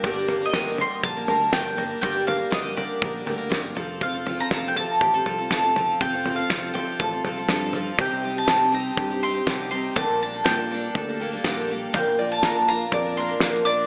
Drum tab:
SD |--o---o-|--o---o-|--o---o-|--o---o-|
FT |oooooooo|oooooooo|oooooooo|oooooooo|
BD |o-o-o-o-|o-o-o-o-|o-o-o-o-|o-o-o-o-|

SD |--o---o-|--o---o-|--o---o-|
FT |o---o---|o---o---|o---o---|
BD |o-o-o-o-|o-o-o-o-|o-o-o-o-|